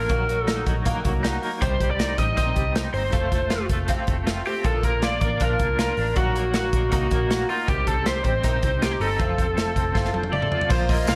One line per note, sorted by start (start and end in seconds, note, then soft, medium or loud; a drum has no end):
0.00 0.13 A#3 medium
0.00 0.10 D4 soft
0.00 0.13 D4 medium
0.00 0.41 A#4 medium
0.09 0.64 A#1 medium
0.09 0.28 A#2 medium
0.09 0.29 D#3 medium
0.09 0.28 F#3 medium
0.09 0.29 A#3 medium
0.09 0.28 D#4 medium
0.09 0.27 F#4 medium
0.09 kick medium
0.09 closed hi-hat medium
0.28 0.65 F#3 medium
0.28 0.47 A#3 soft
0.28 0.47 D#4 soft
0.28 0.47 F#4 soft
0.28 closed hi-hat medium
0.41 0.63 A4 medium
0.47 0.66 D#3 medium
0.47 0.67 A#3 medium
0.47 0.66 D#4 medium
0.47 0.65 F#4 medium
0.47 snare loud
0.47 closed hi-hat medium
0.66 0.99 A#1 medium
0.66 1.03 F#3 medium
0.66 0.85 A#3 soft
0.66 0.85 D#4 medium
0.66 0.85 F#4 medium
0.66 kick medium
0.66 closed hi-hat medium
0.85 1.04 A#2 medium
0.85 1.05 D#3 medium
0.85 1.05 A#3 medium
0.85 1.04 D#4 loud
0.85 1.03 F#4 loud
0.85 kick medium
0.85 closed hi-hat medium
1.04 1.37 C2 medium
1.04 1.61 F#3 medium
1.04 1.22 A#3 soft
1.04 1.23 D#4 medium
1.04 1.23 F#4 medium
1.04 kick medium
1.04 closed hi-hat medium
1.23 1.42 D#3 medium
1.23 1.42 A#3 medium
1.23 1.42 D#4 medium
1.23 1.41 F#4 medium
1.23 snare loud
1.23 closed hi-hat medium
1.42 1.61 A#3 soft
1.42 1.61 D#4 soft
1.42 1.61 F#4 medium
1.42 open hi-hat soft
1.61 2.16 C2 medium
1.61 1.80 C3 medium
1.61 1.80 D#3 medium
1.61 1.79 G3 medium
1.61 1.80 C4 medium
1.61 1.79 D#4 medium
1.61 1.78 G4 medium
1.61 1.90 C5 medium
1.61 kick medium
1.61 closed hi-hat medium
1.79 2.17 G3 medium
1.79 1.98 C4 soft
1.79 1.99 D#4 soft
1.79 1.99 G4 soft
1.79 kick medium
1.79 closed hi-hat medium
1.90 2.18 D5 medium
1.99 2.18 D#3 medium
1.99 2.18 C4 medium
1.99 2.17 D#4 medium
1.99 2.16 G4 medium
1.99 snare loud
1.99 closed hi-hat medium
2.17 2.34 A1 medium
2.17 2.55 G3 medium
2.17 2.36 C4 soft
2.17 2.37 D#4 soft
2.17 2.37 G4 soft
2.17 2.36 D#5 medium
2.17 kick medium
2.17 closed hi-hat medium
2.37 2.53 A#1 medium
2.37 2.56 C3 medium
2.37 2.56 D#3 medium
2.37 2.56 C4 medium
2.37 2.55 D#4 medium
2.37 2.54 G4 medium
2.37 2.73 D#5 loud
2.37 kick medium
2.37 snare soft
2.37 closed hi-hat medium
2.55 2.89 C2 medium
2.55 3.17 G3 medium
2.55 2.74 C4 soft
2.55 2.75 D#4 soft
2.55 2.75 G4 soft
2.55 kick medium
2.55 closed hi-hat medium
2.75 2.94 D#3 medium
2.75 2.94 C4 medium
2.75 2.93 D#4 medium
2.75 2.92 G4 medium
2.75 snare loud
2.75 closed hi-hat medium
2.93 3.10 G1 medium
2.93 3.12 C4 soft
2.93 3.13 D#4 soft
2.93 3.13 G4 soft
2.93 3.66 C5 medium
2.93 open hi-hat medium
3.12 3.67 F1 loud
3.12 3.31 F2 medium
3.12 3.32 C3 medium
3.12 3.32 F3 medium
3.12 3.31 A3 medium
3.12 3.31 C4 medium
3.12 3.30 F4 medium
3.12 kick medium
3.12 closed hi-hat medium
3.31 3.49 F3 soft
3.31 3.49 A3 soft
3.31 3.50 C4 soft
3.31 3.51 F4 soft
3.31 kick medium
3.31 closed hi-hat medium
3.50 3.69 F3 medium
3.50 3.70 A3 medium
3.50 3.69 C4 medium
3.50 3.68 F4 medium
3.50 snare loud
3.50 closed hi-hat medium
3.69 3.94 F1 medium
3.69 3.88 F3 soft
3.69 3.88 A3 soft
3.69 3.88 C4 medium
3.69 3.89 F4 medium
3.69 kick medium
3.69 closed hi-hat medium
3.88 4.08 F2 medium
3.88 4.08 C3 medium
3.88 4.08 F3 medium
3.88 4.07 A3 medium
3.88 4.07 C4 medium
3.88 4.06 F4 medium
3.88 kick medium
3.88 snare soft
3.88 closed hi-hat medium
4.07 4.40 F1 medium
4.07 4.25 F3 soft
4.07 4.26 A3 soft
4.07 4.27 C4 soft
4.07 4.27 F4 medium
4.07 kick medium
4.07 closed hi-hat medium
4.27 4.46 F3 medium
4.27 4.46 A3 medium
4.27 4.45 C4 medium
4.27 4.44 F4 medium
4.27 snare loud
4.27 closed hi-hat medium
4.45 4.64 F3 soft
4.45 4.65 A3 soft
4.45 4.65 C4 soft
4.45 4.65 F4 soft
4.45 4.66 G4 medium
4.45 open hi-hat medium
4.64 5.19 A#1 loud
4.64 4.84 A#2 medium
4.64 4.84 F3 medium
4.64 4.84 A#3 medium
4.64 4.84 D4 medium
4.64 4.82 F4 medium
4.64 4.84 A4 medium
4.64 kick medium
4.64 closed hi-hat medium
4.83 5.02 A#3 soft
4.83 5.03 D4 soft
4.83 5.03 F4 soft
4.83 5.04 A#4 medium
4.83 kick medium
4.83 closed hi-hat medium
5.02 5.22 F3 medium
5.02 5.22 A#3 medium
5.02 5.22 D4 medium
5.02 5.21 F4 medium
5.02 5.20 D5 medium
5.02 snare loud
5.02 closed hi-hat medium
5.21 5.38 A1 medium
5.21 5.40 A#3 soft
5.21 5.41 D4 soft
5.21 5.41 F4 soft
5.21 5.41 D5 loud
5.21 kick medium
5.21 closed hi-hat medium
5.40 5.57 A#1 medium
5.40 5.60 A#2 medium
5.40 5.60 F3 medium
5.40 5.60 A#3 medium
5.40 5.60 D4 medium
5.40 5.59 F4 medium
5.40 5.78 A#4 medium
5.40 kick medium
5.40 closed hi-hat medium
5.59 5.92 C2 medium
5.59 5.79 A#3 soft
5.59 5.80 D4 soft
5.59 5.79 F4 medium
5.59 kick medium
5.59 closed hi-hat medium
5.79 5.98 F3 soft
5.79 5.98 A#3 soft
5.79 5.98 D4 medium
5.79 5.97 F4 medium
5.79 6.17 A#4 medium
5.79 snare loud
5.79 closed hi-hat medium
5.97 6.14 A1 medium
5.97 6.17 A#3 soft
5.97 6.17 D4 soft
5.97 6.17 F4 soft
5.97 open hi-hat medium
6.16 6.70 A#1 medium
6.16 6.36 A#2 medium
6.16 6.36 D#3 medium
6.16 7.68 F#3 medium
6.16 6.36 A#3 medium
6.16 6.36 D#4 medium
6.16 6.54 F#4 medium
6.16 6.35 F#4 medium
6.16 kick medium
6.16 closed hi-hat medium
6.36 6.55 A#3 soft
6.36 6.55 D#4 soft
6.36 6.55 F#4 soft
6.36 closed hi-hat medium
6.54 6.74 D#3 medium
6.54 6.74 A#3 medium
6.54 6.74 D#4 medium
6.54 6.91 F#4 medium
6.54 6.73 F#4 medium
6.54 snare loud
6.54 closed hi-hat medium
6.73 6.89 A#1 medium
6.73 6.92 A#3 soft
6.73 6.93 D#4 soft
6.73 6.93 F#4 soft
6.73 kick medium
6.73 closed hi-hat medium
6.92 7.09 C2 medium
6.92 7.11 A#2 medium
6.92 7.12 D#3 medium
6.92 7.12 A#3 medium
6.92 7.12 D#4 medium
6.92 7.49 F#4 medium
6.92 7.10 F#4 medium
6.92 kick medium
6.92 closed hi-hat medium
7.11 7.43 A#1 medium
7.11 7.30 A#3 soft
7.11 7.30 D#4 soft
7.11 7.30 F#4 soft
7.11 kick medium
7.11 closed hi-hat medium
7.30 7.49 D#3 medium
7.30 7.50 A#3 medium
7.30 7.49 D#4 medium
7.30 7.48 F#4 medium
7.30 snare loud
7.30 closed hi-hat medium
7.49 7.68 A#3 soft
7.49 7.67 D#4 soft
7.49 7.68 F4 medium
7.49 7.68 F#4 soft
7.49 open hi-hat medium
7.68 8.22 C2 loud
7.68 7.87 C3 medium
7.68 7.87 D#3 medium
7.68 9.19 G3 medium
7.68 7.87 C4 medium
7.68 7.87 D#4 medium
7.68 7.87 G4 medium
7.68 7.85 G4 medium
7.68 kick medium
7.68 closed hi-hat medium
7.87 8.05 C4 soft
7.87 8.06 D#4 soft
7.87 8.06 G4 soft
7.87 8.07 A4 medium
7.87 kick medium
7.87 closed hi-hat medium
8.06 8.25 D#3 medium
8.06 8.25 C4 medium
8.06 8.25 D#4 medium
8.06 8.23 G4 medium
8.06 8.23 C5 medium
8.06 snare medium
8.06 closed hi-hat medium
8.24 8.41 A1 medium
8.24 8.44 C4 soft
8.24 8.44 D#4 soft
8.24 8.44 G4 medium
8.24 8.83 C5 loud
8.24 kick medium
8.24 closed hi-hat medium
8.43 8.60 A#1 medium
8.43 8.63 C3 medium
8.43 8.63 D#3 medium
8.43 8.63 C4 medium
8.43 8.63 D#4 medium
8.43 8.62 G4 medium
8.43 kick medium
8.43 snare soft
8.43 closed hi-hat loud
8.63 8.95 C2 medium
8.63 8.81 C4 soft
8.63 8.82 D#4 soft
8.63 8.82 G4 medium
8.63 kick medium
8.63 closed hi-hat medium
8.82 9.01 D#3 soft
8.82 9.01 C4 medium
8.82 9.01 D#4 medium
8.82 8.92 F4 medium
8.82 9.01 G4 medium
8.82 9.00 G4 medium
8.82 snare loud
8.82 closed hi-hat medium
8.92 9.24 G4 medium
9.00 9.16 G1 medium
9.00 9.20 C4 soft
9.00 9.20 D#4 soft
9.00 9.20 G4 soft
9.00 10.33 A4 medium
9.00 open hi-hat medium
9.20 9.73 F1 medium
9.20 9.39 F2 medium
9.20 9.39 C3 medium
9.20 9.39 F3 medium
9.20 9.38 A3 medium
9.20 9.38 C4 medium
9.20 9.37 A4 medium
9.20 kick medium
9.20 closed hi-hat medium
9.38 9.56 F3 soft
9.38 9.57 A3 soft
9.38 9.58 C4 soft
9.38 9.57 A4 soft
9.38 kick medium
9.38 closed hi-hat medium
9.57 9.76 F3 medium
9.57 9.76 A3 medium
9.57 9.76 C4 medium
9.57 9.75 A4 medium
9.57 snare medium
9.57 closed hi-hat medium
9.76 9.92 F1 medium
9.76 9.94 F3 soft
9.76 9.94 A3 soft
9.76 9.95 C4 medium
9.76 9.95 A4 medium
9.76 kick medium
9.76 closed hi-hat medium
9.94 10.13 G1 medium
9.94 10.14 F2 medium
9.94 10.14 C3 medium
9.94 10.14 F3 medium
9.94 10.14 A3 medium
9.94 10.13 C4 medium
9.94 10.50 F4 medium
9.94 10.12 A4 medium
9.94 kick medium
9.94 snare medium
10.05 snare soft
10.13 10.46 F1 medium
10.13 10.31 F3 soft
10.13 10.32 A3 soft
10.13 10.33 C4 soft
10.13 10.32 A4 medium
10.13 high tom medium
10.23 high tom medium
10.32 10.52 F3 medium
10.32 10.52 A3 medium
10.32 10.51 C4 medium
10.32 10.42 G4 medium
10.32 10.50 A4 medium
10.32 10.72 D5 medium
10.32 mid tom medium
10.42 10.74 A4 medium
10.42 mid tom medium
10.51 10.69 F3 soft
10.51 10.71 A3 soft
10.51 10.70 C4 soft
10.51 11.07 F4 medium
10.51 10.70 A4 soft
10.51 floor tom medium
10.61 floor tom medium
10.70 11.03 A#1 loud
10.70 10.89 A#2 medium
10.70 10.89 F3 medium
10.70 10.90 A#3 medium
10.70 10.89 C4 medium
10.70 11.15 F4 loud
10.70 10.88 F4 medium
10.70 11.15 A#4 medium
10.70 11.15 C5 medium
10.70 10.90 C5 loud
10.70 11.15 F5 medium
10.70 11.15 C6 medium
10.70 kick loud
10.70 crash medium
10.70 tambourine medium
10.89 11.08 A#3 soft
10.89 11.08 C4 soft
10.89 11.08 F4 medium
10.89 11.09 D#5 loud
10.89 kick medium
10.89 hi-hat pedal medium
10.89 open hi-hat medium
10.89 tambourine soft
11.07 11.15 C2 medium
11.07 11.15 A#2 medium
11.07 11.15 F3 medium
11.07 11.15 A#3 medium
11.07 11.15 C4 medium
11.07 11.15 F4 medium
11.07 11.15 F5 loud
11.07 snare loud
11.07 hi-hat pedal medium
11.07 open hi-hat medium
11.07 tambourine medium